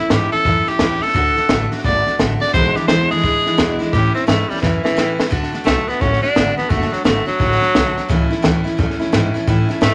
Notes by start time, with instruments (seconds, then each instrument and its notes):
0.00 tenor saxophone E4
0.10 upright bass G#2, steel-string acoustic guitar A2 E3 A3 C#4 E4, tenor saxophone G4, snare, hi-hat pedal
0.32 steel-string acoustic guitar A3 C#4 E4, tenor saxophone A4, muted upright bass stroke, snare
0.45 upright bass F#2, steel-string acoustic guitar E3 A3 C#4 E4, kick, snare
0.67 steel-string acoustic guitar A3 C#4 E4, tenor saxophone G4, muted upright bass stroke, snare
0.79 upright bass E2, steel-string acoustic guitar A2 E3 A3 C#4 E4, snare, hi-hat pedal
1.01 steel-string acoustic guitar A3 C#4 E4, tenor saxophone A4, muted upright bass stroke, snare
1.08 snare
1.14 upright bass D2, steel-string acoustic guitar D3 A3 D4 F#4, kick, snare
1.36 steel-string acoustic guitar A3 D4 F#4, muted upright bass stroke, snare
1.49 upright bass A1, steel-string acoustic guitar D3 A3 D4 F#4, snare, hi-hat pedal
1.71 steel-string acoustic guitar A3 D4 F#4, snare
1.78 snare
1.84 upright bass G#1, steel-string acoustic guitar D3 A3 D4 F#4, tenor saxophone D5, kick, snare
2.06 steel-string acoustic guitar A3 D4 F#4, snare
2.19 upright bass A1, steel-string acoustic guitar D3 A3 D4 F#4, snare, hi-hat pedal
2.40 steel-string acoustic guitar A3 D4 F#4, tenor saxophone D5, snare
2.48 snare
2.54 upright bass B1, steel-string acoustic guitar E2 B2 E3 G#3 D4 E4, tenor saxophone C5, kick, snare
2.76 steel-string acoustic guitar E3 G#3 D4 E4, tenor saxophone G4, muted upright bass stroke, snare
2.88 upright bass C#2, steel-string acoustic guitar E2 B2 E3 G#3 D4 E4, tenor saxophone C5, snare, hi-hat pedal
3.10 steel-string acoustic guitar E3 G#3 D4 E4, tenor saxophone G#4, muted upright bass stroke, snare
3.17 snare
3.23 upright bass D2, steel-string acoustic guitar E3 G#3 D4 E4, kick, snare
3.46 steel-string acoustic guitar E3 G#3 D4 E4, snare
3.57 steel-string acoustic guitar E2 B2 E3 G#3 D4 E4, upright bass E2, snare, hi-hat pedal
3.79 steel-string acoustic guitar E3 G#3 D4 E4, muted upright bass stroke, snare
3.93 steel-string acoustic guitar A2 E3 A3 C#4 E4, upright bass A2, tenor saxophone G4, kick, snare
4.14 steel-string acoustic guitar A3 C#4 E4, tenor saxophone C4, snare
4.27 upright bass G#2, steel-string acoustic guitar A2 E3 A3 C#4 E4, tenor saxophone A3, snare, hi-hat pedal
4.49 tenor saxophone G3, steel-string acoustic guitar A3 C#4 E4, muted upright bass stroke, snare
4.57 snare
4.62 upright bass F#2, steel-string acoustic guitar E3 A3 C#4 E4, tenor saxophone E3, kick, snare
4.83 tenor saxophone E3, steel-string acoustic guitar A3 C#4 E4, muted upright bass stroke, snare
4.96 upright bass E2, steel-string acoustic guitar A2 E3 A3 C#4 E4, snare, hi-hat pedal
5.18 steel-string acoustic guitar A3 C#4 E4, muted upright bass stroke, snare
5.30 upright bass D2, steel-string acoustic guitar D3 A3 D4 F#4, kick, snare
5.43 snare
5.52 steel-string acoustic guitar A3 D4 F#4, snare
5.64 upright bass B1, steel-string acoustic guitar D3 A3 D4 F#4, tenor saxophone A3, snare, hi-hat pedal
5.88 steel-string acoustic guitar A3 D4 F#4, tenor saxophone B3, muted upright bass stroke, snare
6.00 upright bass A1, steel-string acoustic guitar D3 A3 D4 F#4, tenor saxophone C#4, kick, snare
6.13 snare
6.22 steel-string acoustic guitar A3 D4 F#4, tenor saxophone D4, snare
6.35 upright bass G#1, steel-string acoustic guitar D3 A3 D4 F#4, snare, hi-hat pedal
6.57 steel-string acoustic guitar A3 D4 F#4, tenor saxophone B3, muted upright bass stroke, snare
6.70 upright bass F#1, steel-string acoustic guitar D3 A3 D4 F#4, tenor saxophone A3, kick, snare
6.82 snare
6.90 tenor saxophone F#3, steel-string acoustic guitar A3 D4 F#4, muted upright bass stroke, snare
7.04 upright bass G#1, steel-string acoustic guitar D3 A3 D4 F#4, tenor saxophone A3, snare, hi-hat pedal
7.26 tenor saxophone F#3, steel-string acoustic guitar A3 D4 F#4, snare
7.39 upright bass A1, steel-string acoustic guitar D3 A3 D4 F#4, kick, snare
7.52 snare
7.60 steel-string acoustic guitar A3 D4 F#4, snare
7.75 upright bass B1, steel-string acoustic guitar D3 A3 D4 F#4, snare, hi-hat pedal
7.97 steel-string acoustic guitar A3 D4 F#4, muted upright bass stroke, snare
8.09 upright bass C#2, steel-string acoustic guitar A2 E3 A3 C#4 E4, kick, snare
8.31 steel-string acoustic guitar A3 C#4 E4, snare
8.42 upright bass D2, steel-string acoustic guitar A2 E3 A3 C#4 E4, snare, hi-hat pedal
8.64 steel-string acoustic guitar A3 C#4 E4, snare
8.77 upright bass E2, steel-string acoustic guitar E3 A3 C#4 E4, kick, snare
8.90 snare
8.99 steel-string acoustic guitar A3 C#4 E4, muted upright bass stroke, snare
9.12 upright bass G#2, steel-string acoustic guitar A2 E3 A3 C#4 E4, snare, hi-hat pedal
9.34 steel-string acoustic guitar A3 C#4 E4, muted upright bass stroke, snare
9.47 steel-string acoustic guitar A2 E3 A3 C#4 E4, upright bass A2, kick, snare
9.69 steel-string acoustic guitar A3 C#4 E4, snare
9.81 upright bass G#2, steel-string acoustic guitar A2 E3 A3 C#4 E4, tenor saxophone A3, snare, hi-hat pedal